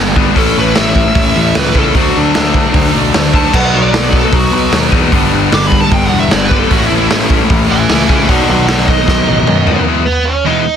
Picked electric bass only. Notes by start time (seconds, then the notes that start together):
Already playing: G1
0.36 A1
0.57 A1
0.77 A1
1.15 A1
1.36 A1
1.56 C#2
1.75 C#2
1.95 D2
2.16 D2
2.36 D2
2.74 D2
2.95 B1
3.14 D2
3.54 B1
3.74 B1
3.93 B1
4.33 B1
4.52 B1
4.72 D#2
4.93 E2
5.13 G1
5.32 G1
5.52 G1
5.91 G1
6.12 E1
6.32 G1
6.71 A1
6.92 A1
7.11 A1
7.50 A1
7.70 A1
7.89 C#2
8.09 C#2
8.29 B1
8.49 B1
8.69 B1
9.08 B1
9.27 A1
9.47 F#2